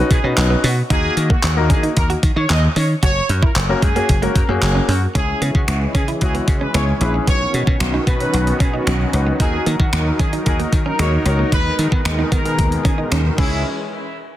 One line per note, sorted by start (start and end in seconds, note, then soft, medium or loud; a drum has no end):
0.00 0.14 C#4 medium
0.00 0.14 D#4 medium
0.00 0.14 F#4 medium
0.00 0.14 B4 medium
0.11 0.19 B2 loud
0.11 0.22 G#4 medium
0.11 muted clean electric guitar stroke soft
0.11 kick loud
0.11 closed hi-hat medium
0.24 0.33 B2 medium
0.24 0.66 C#4 medium
0.24 0.32 C#4 medium
0.24 0.66 D#4 medium
0.24 0.66 F#4 medium
0.24 0.66 B4 medium
0.37 0.54 B1 loud
0.37 clap loud
0.37 closed hi-hat medium
0.50 0.58 B3 medium
0.64 0.81 B2 loud
0.64 0.72 C#4 medium
0.64 0.75 F#4 medium
0.64 open hi-hat medium
0.90 1.08 D#2 loud
0.90 1.32 A#3 medium
0.90 1.32 D#4 medium
0.90 0.98 D#4 medium
0.90 1.32 F#4 medium
0.90 1.13 G#4 loud
0.90 1.32 A#4 loud
0.90 kick loud
0.90 closed hi-hat loud
1.17 1.34 D#3 loud
1.17 muted clean electric guitar stroke soft
1.17 closed hi-hat medium
1.30 1.38 A#3 medium
1.30 1.53 F#4 medium
1.30 kick loud
1.43 1.71 D#2 loud
1.43 muted clean electric guitar stroke soft
1.43 clap loud
1.43 closed hi-hat medium
1.57 2.24 A#3 medium
1.57 2.24 D#4 medium
1.57 2.24 F#4 medium
1.57 2.24 A#4 medium
1.70 1.87 D#3 loud
1.70 1.78 C#4 medium
1.70 1.81 G#4 medium
1.70 kick loud
1.70 closed hi-hat medium
1.83 1.91 D#4 medium
1.83 closed hi-hat medium
1.97 2.14 D#2 loud
1.97 2.08 A#4 medium
1.97 kick medium
1.97 closed hi-hat medium
2.10 2.18 F#4 medium
2.10 closed hi-hat soft
2.23 2.32 D#3 loud
2.23 muted clean electric guitar stroke soft
2.23 kick loud
2.23 closed hi-hat medium
2.36 2.45 D#3 loud
2.36 2.44 D#4 medium
2.36 2.48 C#5 medium
2.50 2.67 D#2 loud
2.50 2.61 D#5 medium
2.50 clap loud
2.50 closed hi-hat medium
2.76 2.93 D#3 loud
2.76 2.84 C#4 medium
2.76 2.87 C#5 medium
2.76 open hi-hat medium
3.03 3.20 F#1 loud
3.03 3.11 F#4 medium
3.03 3.25 C#5 loud
3.03 kick loud
3.03 closed hi-hat loud
3.29 3.47 F#2 loud
3.29 muted clean electric guitar stroke soft
3.29 closed hi-hat medium
3.43 3.51 E4 medium
3.43 3.54 A#4 medium
3.43 kick loud
3.56 3.73 F#1 loud
3.56 muted clean electric guitar stroke soft
3.56 clap loud
3.56 closed hi-hat medium
3.69 3.86 A#3 medium
3.69 3.86 C#4 medium
3.69 3.86 F#4 medium
3.69 3.86 A#4 medium
3.82 4.00 F#2 loud
3.82 3.90 G#3 medium
3.82 4.20 G#4 medium
3.82 kick loud
3.82 closed hi-hat medium
3.95 4.12 A#3 medium
3.95 4.04 A#3 medium
3.95 4.12 C#4 medium
3.95 4.12 F#4 medium
3.95 4.12 G#4 medium
3.95 closed hi-hat medium
4.09 4.26 F#1 loud
4.09 kick medium
4.09 closed hi-hat medium
4.22 4.30 G#3 medium
4.22 4.39 A#3 medium
4.22 4.39 C#4 medium
4.22 4.39 F#4 medium
4.22 4.39 A#4 medium
4.22 closed hi-hat soft
4.36 4.44 F#2 loud
4.36 4.47 A#4 medium
4.36 muted clean electric guitar stroke soft
4.36 kick loud
4.36 closed hi-hat medium
4.48 4.57 F#2 loud
4.48 4.90 A#3 medium
4.48 4.57 A#3 medium
4.48 4.91 C#4 medium
4.48 4.91 F#4 medium
4.48 4.91 G#4 medium
4.62 4.79 F#1 loud
4.62 muted clean electric guitar stroke soft
4.62 clap loud
4.62 closed hi-hat loud
4.75 4.83 C#4 medium
4.88 5.06 F#2 loud
4.88 4.97 C#4 medium
4.88 5.00 F#4 medium
4.88 open hi-hat medium
5.15 5.32 C#2 loud
5.15 7.25 E3 medium
5.15 5.82 C#4 medium
5.15 5.23 C#4 medium
5.15 5.82 E4 medium
5.15 5.82 G#4 medium
5.15 5.38 G#4 loud
5.15 kick loud
5.15 closed hi-hat loud
5.29 muted clean electric guitar stroke soft
5.41 5.50 C#3 medium
5.41 5.50 B3 medium
5.41 closed hi-hat medium
5.55 5.63 C#3 loud
5.55 5.77 F#4 medium
5.55 kick loud
5.68 5.85 C#2 loud
5.68 finger snap loud
5.68 muted clean electric guitar stroke soft
5.68 closed hi-hat medium
5.95 6.12 C#3 loud
5.95 6.03 C#4 medium
5.95 6.06 G#4 medium
5.95 kick medium
5.95 closed hi-hat medium
6.08 6.16 E4 medium
6.08 closed hi-hat medium
6.21 6.39 C#2 loud
6.21 6.55 C#4 medium
6.21 6.55 E4 medium
6.21 6.55 F#4 medium
6.21 6.33 G#4 medium
6.21 kick medium
6.21 closed hi-hat medium
6.35 6.43 B3 medium
6.35 closed hi-hat soft
6.48 6.65 C#3 loud
6.48 muted clean electric guitar stroke soft
6.48 kick loud
6.48 closed hi-hat medium
6.61 6.69 C#4 medium
6.61 6.72 B4 medium
6.74 6.92 C#2 medium
6.74 6.82 B3 medium
6.74 6.91 C#4 medium
6.74 6.91 E4 medium
6.74 6.91 G#4 medium
6.74 6.86 C#5 medium
6.74 finger snap loud
6.74 closed hi-hat loud
7.01 7.18 A#1 medium
7.01 7.27 C#4 medium
7.01 7.28 E4 medium
7.01 7.28 G#4 medium
7.01 7.12 B4 medium
7.01 muted clean electric guitar stroke soft
7.01 closed hi-hat medium
7.14 7.22 C#4 medium
7.27 7.45 B1 loud
7.27 9.38 D#3 medium
7.27 11.48 F#3 medium
7.27 7.35 B3 medium
7.27 9.38 B3 medium
7.27 9.38 F#4 medium
7.27 7.50 C#5 loud
7.27 kick loud
7.27 closed hi-hat loud
7.54 7.63 B2 loud
7.54 muted clean electric guitar stroke soft
7.54 closed hi-hat medium
7.67 7.76 B2 loud
7.67 7.75 C#4 medium
7.67 7.79 C#5 medium
7.67 kick loud
7.80 7.98 B1 loud
7.80 finger snap loud
7.80 muted clean electric guitar stroke soft
7.80 closed hi-hat medium
7.94 8.02 D#4 medium
8.07 8.24 B2 loud
8.07 8.15 B3 medium
8.07 8.45 B4 medium
8.07 kick medium
8.07 closed hi-hat medium
8.20 8.79 C#4 medium
8.20 8.79 D#4 medium
8.20 8.79 B4 medium
8.20 closed hi-hat medium
8.34 8.51 B1 loud
8.34 muted clean electric guitar stroke soft
8.34 closed hi-hat medium
8.47 closed hi-hat soft
8.60 8.78 B2 medium
8.60 8.68 C#4 medium
8.60 8.72 G#4 medium
8.60 kick loud
8.60 closed hi-hat medium
8.74 8.81 D#4 medium
8.87 9.04 B1 medium
8.87 8.95 C#4 medium
8.87 finger snap loud
8.87 closed hi-hat loud
9.00 muted clean electric guitar stroke soft
9.13 9.31 C#2 loud
9.13 9.30 C#4 medium
9.13 9.30 D#4 medium
9.13 9.25 F#4 medium
9.13 9.30 B4 medium
9.13 closed hi-hat medium
9.27 9.35 B3 medium
9.40 9.57 D#2 loud
9.40 10.07 D#4 medium
9.40 9.48 D#4 medium
9.40 13.34 D#4 loud
9.40 10.07 F#4 medium
9.40 9.62 G#4 loud
9.40 13.34 A#4 medium
9.40 10.07 A#4 medium
9.40 kick loud
9.40 closed hi-hat loud
9.53 muted clean electric guitar stroke soft
9.66 9.75 D#3 loud
9.66 9.74 A#3 medium
9.66 closed hi-hat medium
9.80 9.88 D#3 loud
9.80 10.02 F#4 medium
9.80 kick loud
9.93 10.10 D#2 loud
9.93 finger snap loud
9.93 muted clean electric guitar stroke soft
9.93 closed hi-hat medium
10.19 10.37 D#3 loud
10.19 10.28 C#4 medium
10.19 10.31 G#4 medium
10.19 kick medium
10.19 closed hi-hat medium
10.33 10.41 D#4 medium
10.33 closed hi-hat medium
10.46 10.64 D#2 loud
10.46 10.79 D#4 medium
10.46 10.80 F#4 medium
10.46 10.57 G#4 medium
10.46 10.80 A#4 medium
10.46 kick medium
10.46 closed hi-hat medium
10.59 10.67 A#3 medium
10.59 closed hi-hat soft
10.72 10.90 D#3 loud
10.72 muted clean electric guitar stroke soft
10.72 kick loud
10.72 closed hi-hat medium
10.86 10.94 C#4 medium
10.86 10.97 A#4 medium
10.99 11.16 D#2 medium
10.99 11.07 G#3 medium
10.99 11.16 D#4 medium
10.99 11.16 F#4 medium
10.99 11.16 A#4 medium
10.99 11.10 C#5 medium
10.99 finger snap loud
10.99 closed hi-hat loud
11.25 11.43 C#2 loud
11.25 11.52 D#4 medium
11.25 11.52 F#4 medium
11.25 11.37 A#4 medium
11.25 11.52 C#5 medium
11.25 muted clean electric guitar stroke soft
11.25 closed hi-hat medium
11.39 11.47 A#3 medium
11.52 11.70 D#2 loud
11.52 13.36 B2 medium
11.52 13.36 D#3 medium
11.52 13.36 G#3 medium
11.52 11.60 G#3 medium
11.52 11.75 B4 loud
11.52 kick loud
11.52 closed hi-hat loud
11.79 11.87 D#3 loud
11.79 muted clean electric guitar stroke soft
11.79 closed hi-hat medium
11.92 12.01 D#3 loud
11.92 12.00 B3 medium
11.92 12.03 B4 medium
11.92 kick loud
12.05 12.22 D#2 medium
12.05 finger snap loud
12.05 muted clean electric guitar stroke soft
12.05 closed hi-hat medium
12.19 12.27 D#4 medium
12.32 12.60 D#3 medium
12.32 12.40 B3 medium
12.32 12.69 A#4 medium
12.32 kick medium
12.32 closed hi-hat medium
12.45 13.04 B3 medium
12.45 13.04 G#4 medium
12.45 13.04 A#4 medium
12.45 closed hi-hat medium
12.58 12.76 D#2 loud
12.58 muted clean electric guitar stroke soft
12.58 kick medium
12.58 closed hi-hat medium
12.72 closed hi-hat soft
12.85 13.02 D#3 medium
12.85 12.93 C#4 medium
12.85 12.96 G#4 medium
12.85 kick loud
12.85 closed hi-hat medium
12.98 13.06 D#4 medium
13.12 13.29 D#2 loud
13.12 13.20 C#4 medium
13.12 finger snap loud
13.12 closed hi-hat loud
13.25 muted clean electric guitar stroke soft
13.38 13.63 C#2 loud
13.38 13.63 E3 medium
13.38 13.63 G#3 medium
13.38 13.63 C#4 medium
13.38 13.54 C#4 medium
13.38 13.63 E4 medium
13.38 13.63 G#4 medium
13.38 kick loud
13.38 crash medium